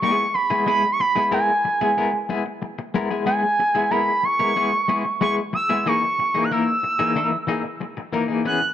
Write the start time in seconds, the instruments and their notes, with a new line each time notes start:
0.02 clean electric guitar G#3 B3 E4 G#4, analog synth lead C#6
0.34 analog synth lead B5, muted clean electric guitar stroke
0.50 clean electric guitar G#3 B3 E4 G#4
0.66 clean electric guitar G#3 B3 E4 G#4, analog synth lead B5
0.84 muted clean electric guitar stroke
0.92 analog synth lead C#6
1.00 analog synth lead B5, muted clean electric guitar stroke
1.15 clean electric guitar G#3 B3 E4 G#4
1.31 clean electric guitar G#3 B3 E4 A#4, analog synth lead G#5
1.65 muted clean electric guitar stroke
1.81 clean electric guitar G#3 B3 E4 G#4
1.97 clean electric guitar G#3 B3 E4 A#4
2.13 muted clean electric guitar stroke
2.29 clean electric guitar G#3 B3 E4 G#4
2.46 muted clean electric guitar stroke
2.62 muted clean electric guitar stroke
2.79 muted clean electric guitar stroke
2.94 clean electric guitar G#3 B3 E4 A#4
3.10 clean electric guitar G#3 B3 E4 G#4
3.26 clean electric guitar G#3 B3 E4 G#4, analog synth lead G#5
3.43 muted clean electric guitar stroke
3.59 muted clean electric guitar stroke
3.75 clean electric guitar G#3 B3 E4 G#4
3.91 clean electric guitar G#3 B3 E4 A#4, analog synth lead B5
4.23 analog synth lead C#6, muted clean electric guitar stroke
4.39 clean electric guitar G#3 B3 E4 A#4
4.56 clean electric guitar G#3 B3 E4 G#4
4.73 muted clean electric guitar stroke
4.88 clean electric guitar G#3 B3 E4 G#4
5.05 muted clean electric guitar stroke
5.21 clean electric guitar G#3 B3 E4 G#4, analog synth lead C#6
5.53 analog synth lead E6, muted clean electric guitar stroke
5.69 clean electric guitar G#3 B3 E4 G#4
5.86 clean electric guitar E3 A#3 D#4 G#4, analog synth lead C#6
6.03 muted clean electric guitar stroke
6.19 muted clean electric guitar stroke
6.34 clean electric guitar E3 A#3 D#4 G#4
6.44 analog synth lead F#6
6.51 clean electric guitar E3 A#3 D#4 A#4, analog synth lead E6
6.83 muted clean electric guitar stroke
6.99 clean electric guitar E3 A#3 D#4 G#4
7.15 clean electric guitar E3 A#3 D#4 A#4
7.31 muted clean electric guitar stroke
7.47 clean electric guitar E3 A#3 D#4 G#4
7.64 muted clean electric guitar stroke
7.80 muted clean electric guitar stroke
7.97 muted clean electric guitar stroke
8.13 clean electric guitar E3 A#3 D#4 A#4
8.28 clean electric guitar E3 A#3 D#4 G#4
8.45 clean electric guitar E3 B3 C#4 G#4, analog synth lead F#6
8.62 muted clean electric guitar stroke